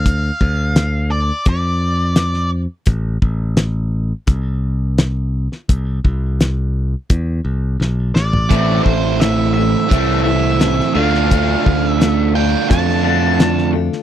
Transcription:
0.00 0.30 D2 medium
0.00 1.14 F5 medium
0.06 kick medium
0.06 closed hi-hat medium
0.41 1.30 D2 medium
0.41 kick medium
0.76 snare loud
0.76 closed hi-hat medium
1.11 1.47 D5 medium
1.46 2.66 F2 medium
1.46 2.49 D5 medium
1.46 kick loud
1.46 closed hi-hat medium
2.16 snare loud
2.16 closed hi-hat medium
2.34 snare soft
2.86 3.17 A1 loud
2.86 kick loud
2.86 closed hi-hat medium
3.22 4.12 A1 medium
3.22 kick medium
3.57 snare medium
3.57 closed hi-hat medium
4.27 5.47 C2 medium
4.27 kick loud
4.27 closed hi-hat medium
4.98 snare loud
4.98 closed hi-hat medium
5.52 snare soft
5.69 5.99 C2 medium
5.69 kick loud
5.69 closed hi-hat medium
6.04 6.94 C2 loud
6.04 kick medium
6.40 snare loud
6.40 closed hi-hat medium
7.10 7.40 E2 medium
7.10 kick loud
7.10 closed hi-hat medium
7.45 7.76 C2 medium
7.80 8.11 B1 medium
7.80 snare medium
8.15 8.47 A1 medium
8.15 8.83 D5 medium
8.15 snare medium
8.33 floor tom medium
8.50 8.80 A1 loud
8.50 8.85 A2 medium
8.50 8.83 A2 medium
8.50 8.85 E3 medium
8.50 8.84 E3 medium
8.50 8.85 A3 medium
8.50 8.83 A3 loud
8.50 8.85 C4 medium
8.50 8.83 E4 medium
8.50 8.82 A4 medium
8.50 kick loud
8.50 closed hi-hat medium
8.84 9.74 A1 medium
8.84 9.17 A2 medium
8.84 9.17 E3 medium
8.84 9.20 A3 soft
8.84 9.20 C4 soft
8.84 9.20 E4 soft
8.84 9.19 A4 medium
8.84 9.20 C5 medium
8.84 kick medium
9.20 9.55 A2 medium
9.20 9.53 A2 medium
9.20 9.55 E3 medium
9.20 9.53 E3 medium
9.20 9.56 A3 medium
9.20 9.56 C4 medium
9.20 9.56 E4 medium
9.20 9.54 A4 medium
9.20 9.53 E5 medium
9.20 snare loud
9.20 closed hi-hat medium
9.54 9.88 A2 medium
9.54 9.88 E3 medium
9.54 9.90 A3 soft
9.54 9.91 C4 soft
9.54 9.91 E4 soft
9.54 9.90 A4 soft
9.54 10.20 E5 medium
9.89 10.80 C2 medium
9.89 10.24 A2 medium
9.89 10.92 E3 medium
9.89 10.25 A3 medium
9.89 10.26 C4 medium
9.89 10.25 E4 medium
9.89 kick loud
9.89 closed hi-hat medium
9.93 10.24 E3 medium
9.93 10.24 A3 medium
9.93 10.24 A4 medium
10.24 10.57 A2 medium
10.24 10.58 E3 medium
10.24 10.58 A3 soft
10.24 10.59 C4 soft
10.24 10.60 E4 soft
10.24 10.60 A4 soft
10.24 10.94 E5 medium
10.59 10.95 A2 medium
10.59 10.92 A2 medium
10.59 10.95 E3 medium
10.59 10.93 E3 medium
10.59 10.95 A3 medium
10.59 10.95 C4 medium
10.59 10.95 E4 medium
10.59 10.95 A4 medium
10.59 snare loud
10.59 closed hi-hat medium
10.80 snare soft
10.94 11.55 D2 medium
10.94 11.28 D3 medium
10.94 11.28 A3 medium
10.94 11.29 D4 medium
10.94 11.31 D4 soft
10.94 11.31 F4 soft
10.94 11.31 A4 soft
10.94 11.88 F5 medium
11.15 snare soft
11.30 11.63 D3 medium
11.30 11.65 D3 medium
11.30 11.63 A3 medium
11.30 11.66 A3 medium
11.30 11.64 D4 medium
11.30 11.66 D4 medium
11.30 11.65 F4 medium
11.30 11.63 A4 medium
11.30 kick loud
11.30 closed hi-hat medium
11.64 12.55 D2 medium
11.64 11.96 D3 medium
11.64 11.97 A3 medium
11.64 12.01 D4 soft
11.64 12.00 F4 soft
11.64 12.00 A4 soft
11.64 kick medium
11.88 12.35 E5 medium
11.99 12.31 D3 medium
11.99 12.35 D3 medium
11.99 12.31 A3 medium
11.99 12.35 A3 medium
11.99 12.36 D4 medium
11.99 12.35 F4 medium
11.99 12.33 A4 loud
11.99 snare loud
11.99 closed hi-hat medium
12.34 12.66 D3 medium
12.34 12.67 A3 medium
12.34 12.69 D4 soft
12.34 12.70 F4 soft
12.34 12.70 A4 soft
12.34 12.69 G5 medium
12.39 13.74 D3 medium
12.69 13.89 F2 medium
12.69 13.01 D3 medium
12.69 13.04 A3 medium
12.69 13.01 A3 medium
12.69 13.05 D4 medium
12.69 13.05 F4 medium
12.69 13.03 A4 medium
12.69 13.71 A5 loud
12.69 kick loud
12.69 closed hi-hat medium
12.89 snare soft
13.03 13.36 D3 medium
13.03 13.37 A3 loud
13.03 13.37 D4 loud
13.03 13.39 F4 soft
13.03 13.39 A4 soft
13.07 13.39 D4 soft
13.39 13.74 D3 medium
13.39 13.71 D3 medium
13.39 13.74 A3 medium
13.39 13.71 A3 medium
13.39 13.75 D4 medium
13.39 13.74 F4 medium
13.39 13.72 A4 medium
13.39 snare loud
13.39 closed hi-hat medium
13.58 snare soft
13.73 14.03 D3 medium
13.73 14.03 A3 medium
13.73 14.03 D4 soft
13.73 14.03 F4 soft
13.73 14.03 A4 medium
13.93 snare soft

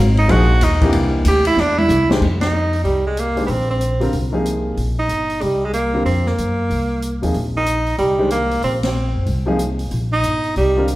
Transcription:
0.00 0.28 G#1 loud
0.17 0.33 D#4 loud
0.17 ride medium
0.28 0.60 A#1 medium
0.28 0.47 F3 medium
0.28 0.48 A#3 medium
0.28 0.47 D#4 medium
0.28 0.65 F#4 loud
0.28 0.48 G#4 medium
0.28 0.48 C5 medium
0.28 ride medium
0.61 0.92 D#2 medium
0.61 0.95 D#4 loud
0.61 snare soft
0.61 hi-hat pedal medium
0.61 ride medium
0.81 1.23 E3 medium
0.81 1.23 A#3 medium
0.81 1.23 C4 medium
0.81 1.24 D4 medium
0.81 1.24 G4 medium
0.81 kick medium
0.81 ride medium
0.93 1.24 C2 medium
0.93 ride medium
1.25 1.56 D2 loud
1.25 1.46 G4 medium
1.25 hi-hat pedal medium
1.25 ride medium
1.45 1.62 E4 loud
1.45 ride medium
1.56 1.88 E2 medium
1.56 snare medium
1.60 1.80 D4 loud
1.78 2.10 E4 loud
1.78 high tom medium
1.89 2.20 C2 medium
1.89 hi-hat pedal medium
1.89 high tom medium
2.09 2.20 D#3 medium
2.09 2.20 G#3 medium
2.09 2.21 D4 medium
2.09 2.21 G4 medium
2.09 2.21 C5 medium
2.09 snare loud
2.21 2.82 F2 medium
2.21 kick medium
2.21 crash medium
2.41 2.82 D#4 medium
2.41 snare medium
2.41 ride medium
2.73 open hi-hat soft
2.84 3.45 C2 medium
2.84 3.04 G3 medium
2.84 open hi-hat soft
3.07 3.21 G#3 medium
3.17 3.46 A#3 medium
3.17 closed hi-hat soft
3.36 3.48 D#3 medium
3.36 3.48 G#3 medium
3.36 3.48 D4 medium
3.36 3.48 G4 medium
3.36 3.48 C5 medium
3.36 open hi-hat soft
3.47 4.10 A#1 medium
3.47 3.52 B3 medium
3.47 3.70 C4 medium
3.47 open hi-hat soft
3.71 4.11 C4 medium
3.81 closed hi-hat soft
4.00 4.12 D3 medium
4.00 4.12 G3 medium
4.00 4.12 C4 medium
4.00 4.12 F4 medium
4.00 4.12 A#4 medium
4.00 open hi-hat soft
4.12 4.74 C2 medium
4.12 open hi-hat soft
4.32 4.75 C3 medium
4.32 4.75 F3 medium
4.32 4.75 A#3 medium
4.32 4.75 D#4 medium
4.32 4.76 G#4 medium
4.46 closed hi-hat medium
4.77 5.07 A#1 medium
4.77 open hi-hat soft
4.99 5.44 D#4 medium
5.09 5.39 G1 medium
5.09 closed hi-hat soft
5.30 open hi-hat soft
5.41 6.03 C2 medium
5.41 5.66 G3 medium
5.41 open hi-hat soft
5.65 5.73 G#3 medium
5.73 6.04 A#3 medium
5.73 closed hi-hat soft
5.93 6.04 D3 medium
5.93 6.05 G3 medium
5.93 6.05 C4 medium
5.93 6.05 F4 medium
5.93 6.06 A#4 medium
6.05 6.36 F2 medium
6.05 6.29 C4 medium
6.05 open hi-hat soft
6.26 7.23 A#3 medium
6.26 snare soft
6.38 6.68 F#2 medium
6.38 closed hi-hat soft
6.70 7.19 C2 medium
6.70 open hi-hat soft
7.02 closed hi-hat medium
7.22 7.34 D#2 medium
7.22 7.33 C3 medium
7.22 7.33 F3 soft
7.22 7.33 A#3 soft
7.22 7.34 D#4 soft
7.22 7.34 G#4 medium
7.22 open hi-hat soft
7.34 7.96 A#1 medium
7.34 open hi-hat soft
7.57 7.97 D#4 medium
7.66 closed hi-hat medium
7.86 open hi-hat soft
7.98 8.60 C2 medium
7.98 8.29 G3 medium
7.98 open hi-hat soft
8.18 8.30 D#3 medium
8.18 8.30 G#3 medium
8.18 8.30 D4 medium
8.18 8.30 G4 medium
8.18 8.30 C5 medium
8.30 8.61 A#3 medium
8.30 closed hi-hat medium
8.51 open hi-hat soft
8.62 9.12 A#1 medium
8.62 8.73 C4 medium
8.62 open hi-hat soft
8.83 9.24 C4 medium
8.83 snare medium
8.83 ride medium
9.15 9.26 F#1 medium
9.26 9.88 C2 medium
9.26 open hi-hat soft
9.46 9.57 C3 medium
9.46 9.58 F3 medium
9.46 9.58 A#3 medium
9.46 9.58 D#4 medium
9.46 9.58 G#4 medium
9.59 closed hi-hat soft
9.79 open hi-hat soft
9.91 10.21 A#1 medium
9.91 open hi-hat soft
10.12 10.53 D#4 loud
10.23 10.54 G1 medium
10.23 closed hi-hat soft
10.44 open hi-hat soft
10.56 10.96 C2 medium
10.56 10.86 G3 medium
10.56 open hi-hat soft
10.76 10.87 D3 medium
10.76 10.87 G3 soft
10.76 10.87 C4 medium
10.76 10.87 F4 medium
10.76 10.88 A#4 medium
10.88 closed hi-hat medium

